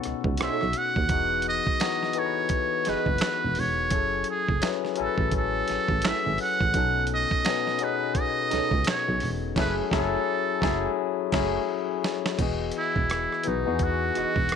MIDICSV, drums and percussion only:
0, 0, Header, 1, 2, 480
1, 0, Start_track
1, 0, Tempo, 705882
1, 743, Time_signature, 4, 2, 24, 8
1, 9898, End_track
2, 0, Start_track
2, 0, Title_t, "Drums"
2, 24, Note_on_c, 9, 42, 61
2, 37, Note_on_c, 9, 37, 31
2, 92, Note_off_c, 9, 42, 0
2, 105, Note_off_c, 9, 37, 0
2, 166, Note_on_c, 9, 36, 86
2, 234, Note_off_c, 9, 36, 0
2, 255, Note_on_c, 9, 42, 75
2, 277, Note_on_c, 9, 37, 109
2, 323, Note_off_c, 9, 42, 0
2, 345, Note_off_c, 9, 37, 0
2, 415, Note_on_c, 9, 37, 33
2, 483, Note_off_c, 9, 37, 0
2, 498, Note_on_c, 9, 42, 74
2, 566, Note_off_c, 9, 42, 0
2, 654, Note_on_c, 9, 36, 86
2, 722, Note_off_c, 9, 36, 0
2, 740, Note_on_c, 9, 42, 75
2, 744, Note_on_c, 9, 36, 99
2, 808, Note_off_c, 9, 42, 0
2, 812, Note_off_c, 9, 36, 0
2, 966, Note_on_c, 9, 42, 59
2, 1034, Note_off_c, 9, 42, 0
2, 1133, Note_on_c, 9, 36, 84
2, 1201, Note_off_c, 9, 36, 0
2, 1223, Note_on_c, 9, 42, 74
2, 1230, Note_on_c, 9, 26, 73
2, 1233, Note_on_c, 9, 38, 105
2, 1291, Note_off_c, 9, 42, 0
2, 1298, Note_off_c, 9, 26, 0
2, 1301, Note_off_c, 9, 38, 0
2, 1378, Note_on_c, 9, 38, 37
2, 1446, Note_off_c, 9, 38, 0
2, 1451, Note_on_c, 9, 42, 64
2, 1519, Note_off_c, 9, 42, 0
2, 1693, Note_on_c, 9, 42, 67
2, 1699, Note_on_c, 9, 36, 88
2, 1761, Note_off_c, 9, 42, 0
2, 1767, Note_off_c, 9, 36, 0
2, 1938, Note_on_c, 9, 42, 65
2, 1951, Note_on_c, 9, 38, 34
2, 2006, Note_off_c, 9, 42, 0
2, 2019, Note_off_c, 9, 38, 0
2, 2081, Note_on_c, 9, 36, 83
2, 2149, Note_off_c, 9, 36, 0
2, 2165, Note_on_c, 9, 42, 69
2, 2185, Note_on_c, 9, 26, 85
2, 2187, Note_on_c, 9, 38, 121
2, 2233, Note_off_c, 9, 42, 0
2, 2253, Note_off_c, 9, 26, 0
2, 2255, Note_off_c, 9, 38, 0
2, 2414, Note_on_c, 9, 46, 55
2, 2482, Note_off_c, 9, 46, 0
2, 2655, Note_on_c, 9, 42, 80
2, 2661, Note_on_c, 9, 36, 97
2, 2723, Note_off_c, 9, 42, 0
2, 2729, Note_off_c, 9, 36, 0
2, 2884, Note_on_c, 9, 42, 58
2, 2952, Note_off_c, 9, 42, 0
2, 3050, Note_on_c, 9, 36, 90
2, 3118, Note_off_c, 9, 36, 0
2, 3140, Note_on_c, 9, 42, 75
2, 3147, Note_on_c, 9, 26, 79
2, 3149, Note_on_c, 9, 38, 100
2, 3208, Note_off_c, 9, 42, 0
2, 3215, Note_off_c, 9, 26, 0
2, 3217, Note_off_c, 9, 38, 0
2, 3295, Note_on_c, 9, 38, 39
2, 3363, Note_off_c, 9, 38, 0
2, 3370, Note_on_c, 9, 42, 61
2, 3438, Note_off_c, 9, 42, 0
2, 3520, Note_on_c, 9, 36, 93
2, 3588, Note_off_c, 9, 36, 0
2, 3614, Note_on_c, 9, 42, 68
2, 3618, Note_on_c, 9, 36, 84
2, 3682, Note_off_c, 9, 42, 0
2, 3686, Note_off_c, 9, 36, 0
2, 3860, Note_on_c, 9, 42, 64
2, 3873, Note_on_c, 9, 38, 33
2, 3928, Note_off_c, 9, 42, 0
2, 3941, Note_off_c, 9, 38, 0
2, 4002, Note_on_c, 9, 36, 85
2, 4070, Note_off_c, 9, 36, 0
2, 4092, Note_on_c, 9, 42, 73
2, 4111, Note_on_c, 9, 26, 89
2, 4114, Note_on_c, 9, 38, 106
2, 4160, Note_off_c, 9, 42, 0
2, 4179, Note_off_c, 9, 26, 0
2, 4182, Note_off_c, 9, 38, 0
2, 4340, Note_on_c, 9, 46, 51
2, 4408, Note_off_c, 9, 46, 0
2, 4492, Note_on_c, 9, 36, 98
2, 4560, Note_off_c, 9, 36, 0
2, 4582, Note_on_c, 9, 42, 75
2, 4583, Note_on_c, 9, 36, 102
2, 4650, Note_off_c, 9, 42, 0
2, 4651, Note_off_c, 9, 36, 0
2, 4806, Note_on_c, 9, 42, 62
2, 4874, Note_off_c, 9, 42, 0
2, 4972, Note_on_c, 9, 36, 87
2, 5040, Note_off_c, 9, 36, 0
2, 5064, Note_on_c, 9, 42, 76
2, 5071, Note_on_c, 9, 26, 81
2, 5073, Note_on_c, 9, 38, 105
2, 5132, Note_off_c, 9, 42, 0
2, 5139, Note_off_c, 9, 26, 0
2, 5141, Note_off_c, 9, 38, 0
2, 5218, Note_on_c, 9, 38, 36
2, 5286, Note_off_c, 9, 38, 0
2, 5296, Note_on_c, 9, 42, 60
2, 5364, Note_off_c, 9, 42, 0
2, 5541, Note_on_c, 9, 36, 83
2, 5541, Note_on_c, 9, 42, 73
2, 5609, Note_off_c, 9, 36, 0
2, 5609, Note_off_c, 9, 42, 0
2, 5789, Note_on_c, 9, 42, 69
2, 5802, Note_on_c, 9, 38, 33
2, 5857, Note_off_c, 9, 42, 0
2, 5870, Note_off_c, 9, 38, 0
2, 5924, Note_on_c, 9, 36, 83
2, 5992, Note_off_c, 9, 36, 0
2, 6014, Note_on_c, 9, 42, 72
2, 6034, Note_on_c, 9, 26, 91
2, 6036, Note_on_c, 9, 38, 122
2, 6082, Note_off_c, 9, 42, 0
2, 6102, Note_off_c, 9, 26, 0
2, 6104, Note_off_c, 9, 38, 0
2, 6258, Note_on_c, 9, 46, 51
2, 6326, Note_off_c, 9, 46, 0
2, 6502, Note_on_c, 9, 36, 105
2, 6503, Note_on_c, 9, 49, 70
2, 6512, Note_on_c, 9, 38, 97
2, 6570, Note_off_c, 9, 36, 0
2, 6571, Note_off_c, 9, 49, 0
2, 6580, Note_off_c, 9, 38, 0
2, 6742, Note_on_c, 9, 36, 103
2, 6751, Note_on_c, 9, 38, 96
2, 6810, Note_off_c, 9, 36, 0
2, 6819, Note_off_c, 9, 38, 0
2, 7221, Note_on_c, 9, 36, 97
2, 7230, Note_on_c, 9, 38, 102
2, 7289, Note_off_c, 9, 36, 0
2, 7298, Note_off_c, 9, 38, 0
2, 7700, Note_on_c, 9, 49, 77
2, 7701, Note_on_c, 9, 36, 98
2, 7709, Note_on_c, 9, 38, 99
2, 7768, Note_off_c, 9, 49, 0
2, 7769, Note_off_c, 9, 36, 0
2, 7777, Note_off_c, 9, 38, 0
2, 8190, Note_on_c, 9, 38, 94
2, 8258, Note_off_c, 9, 38, 0
2, 8335, Note_on_c, 9, 38, 90
2, 8403, Note_off_c, 9, 38, 0
2, 8422, Note_on_c, 9, 42, 69
2, 8423, Note_on_c, 9, 36, 104
2, 8425, Note_on_c, 9, 49, 83
2, 8490, Note_off_c, 9, 42, 0
2, 8491, Note_off_c, 9, 36, 0
2, 8493, Note_off_c, 9, 49, 0
2, 8646, Note_on_c, 9, 42, 59
2, 8714, Note_off_c, 9, 42, 0
2, 8812, Note_on_c, 9, 36, 83
2, 8880, Note_off_c, 9, 36, 0
2, 8906, Note_on_c, 9, 42, 66
2, 8915, Note_on_c, 9, 37, 97
2, 8974, Note_off_c, 9, 42, 0
2, 8983, Note_off_c, 9, 37, 0
2, 9061, Note_on_c, 9, 37, 36
2, 9129, Note_off_c, 9, 37, 0
2, 9136, Note_on_c, 9, 42, 65
2, 9204, Note_off_c, 9, 42, 0
2, 9378, Note_on_c, 9, 42, 66
2, 9381, Note_on_c, 9, 36, 84
2, 9446, Note_off_c, 9, 42, 0
2, 9449, Note_off_c, 9, 36, 0
2, 9625, Note_on_c, 9, 42, 58
2, 9638, Note_on_c, 9, 37, 30
2, 9693, Note_off_c, 9, 42, 0
2, 9706, Note_off_c, 9, 37, 0
2, 9764, Note_on_c, 9, 36, 86
2, 9832, Note_off_c, 9, 36, 0
2, 9853, Note_on_c, 9, 42, 69
2, 9875, Note_on_c, 9, 37, 116
2, 9898, Note_off_c, 9, 37, 0
2, 9898, Note_off_c, 9, 42, 0
2, 9898, End_track
0, 0, End_of_file